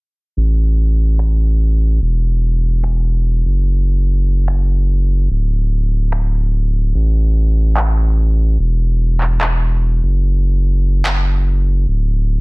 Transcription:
0.37 2.00 A1 medium
1.19 finger snap medium
2.01 3.43 E1 medium
2.84 finger snap medium
3.45 5.28 F#1 medium
4.48 finger snap medium
5.30 6.93 D1 medium
6.12 finger snap medium
6.94 8.57 A1 medium
7.77 finger snap medium
7.77 clap loud
8.59 10.01 E1 medium
9.21 clap soft
9.41 finger snap medium
9.41 clap loud
10.03 11.86 F#1 medium
11.05 finger snap medium
11.05 clap loud
11.88 12.40 D1 medium

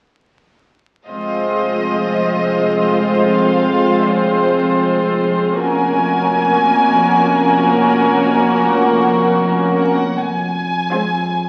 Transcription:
1.07 5.55 F1 soft
1.07 5.55 F2 soft
1.07 5.56 F2 medium
1.07 5.55 G#3 soft
1.07 5.55 C4 soft
1.07 5.55 F4 soft
1.07 5.56 C5 soft
1.07 3.32 D#5 soft
3.35 4.10 F5 soft
4.10 5.22 C5 soft
5.58 9.93 F1 soft
5.58 10.12 F2 medium
5.58 9.93 F2 medium
5.58 9.92 A#3 soft
5.58 9.92 C#4 soft
5.58 9.93 F#4 soft
5.58 9.93 A#4 soft
5.58 7.83 G#5 medium
7.87 8.62 G#5 soft
8.64 9.40 F#5 soft
9.78 10.14 F#5 soft
10.16 10.78 F1 soft
10.16 10.78 F2 soft
10.16 11.49 F2 medium
10.16 11.49 G#5 soft
10.92 11.49 G#3 soft
10.92 11.49 C4 soft
10.92 11.49 F4 soft
10.92 11.49 C5 soft

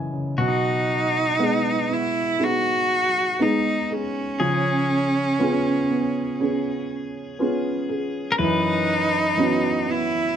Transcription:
0.00 0.34 F#2 soft
0.00 0.13 C#3 soft
0.00 0.37 E3 soft
0.00 0.35 A#3 soft
0.00 0.36 C#4 soft
0.00 0.40 D#5 soft
0.00 0.41 E5 soft
0.00 0.35 G#5 soft
0.13 0.38 C#3 soft
0.38 4.36 B2 medium
0.38 4.40 F#3 medium
0.38 4.52 F#4 medium
0.43 1.94 D#4 medium
1.39 2.37 G#3 soft
1.39 1.88 B3 medium
1.39 2.37 B3 soft
1.39 2.39 G#4 medium
1.39 2.37 D#5 soft
1.90 2.38 B3 medium
1.90 2.44 E4 medium
2.39 3.38 B3 medium
2.39 3.39 D#4 medium
2.39 3.44 F#4 loud
2.39 3.39 G#4 medium
3.39 4.37 G#3 soft
3.39 4.37 B3 soft
3.39 4.50 B3 soft
3.39 4.37 D#4 soft
3.39 4.50 D#4 soft
3.39 3.95 D#4 medium
3.39 3.89 G#4 medium
3.90 6.91 C#4 medium
3.90 4.50 G#4 medium
4.40 8.34 C#3 medium
4.40 8.38 F3 medium
4.40 8.43 G#4 medium
5.39 6.36 B3 soft
5.39 5.88 B3 medium
5.39 6.36 C#4 soft
5.39 6.39 C#4 medium
5.39 6.37 F4 medium
5.39 6.40 G#4 medium
5.90 6.38 B3 medium
6.40 7.38 B3 medium
6.40 7.38 C#4 medium
6.40 7.39 G#4 medium
7.39 8.35 B3 soft
7.39 8.49 B3 soft
7.39 8.36 C#4 soft
7.39 8.49 C#4 medium
7.39 8.36 F4 soft
7.39 7.88 G#4 medium
7.89 8.49 G#4 medium
8.32 8.38 A#4 medium
8.38 10.36 F#2 medium
8.38 10.36 E3 medium
8.38 9.92 D#4 medium
8.38 10.36 B4 loud
9.37 10.34 E3 soft
9.37 10.34 F#3 soft
9.37 10.34 B3 soft
9.37 9.86 B3 medium
9.37 10.36 C#4 medium
9.37 10.36 F#4 medium
9.88 10.36 B3 medium
9.88 10.36 E4 medium

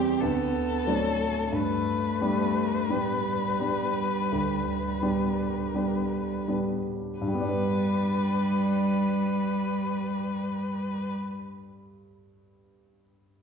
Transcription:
0.00 0.24 E2 soft
0.00 0.18 G3 soft
0.00 0.17 B3 soft
0.00 0.23 C4 medium
0.00 0.18 G4 soft
0.00 0.22 G4 soft
0.21 0.84 D2 soft
0.21 0.90 B3 soft
0.21 1.54 A4 soft
0.87 1.49 F#3 soft
0.87 1.54 A3 soft
0.87 1.49 C4 soft
0.87 1.50 D4 soft
1.52 2.18 G2 soft
1.52 2.92 A3 medium
1.52 6.48 B4 soft
2.21 2.86 G3 soft
2.21 2.86 B3 soft
2.21 2.86 D4 soft
2.89 3.55 G3 soft
2.89 6.49 G3 soft
2.89 3.56 B3 soft
2.89 3.56 D4 soft
3.60 4.26 G3 soft
3.60 4.26 B3 soft
3.60 4.27 D4 soft
4.32 5.00 D2 soft
5.02 5.70 G3 soft
5.02 5.70 B3 soft
5.02 5.70 D4 soft
5.74 6.44 G3 soft
5.74 6.45 B3 soft
5.74 6.45 D4 soft
6.48 7.16 G3 soft
6.48 7.16 B3 soft
6.48 7.16 D4 soft
7.20 11.12 G2 soft
7.20 11.12 G3 soft
7.20 11.11 B4 soft
7.28 11.19 G3 soft
7.34 11.25 B3 soft
7.41 11.32 D4 soft
7.49 11.40 B4 soft

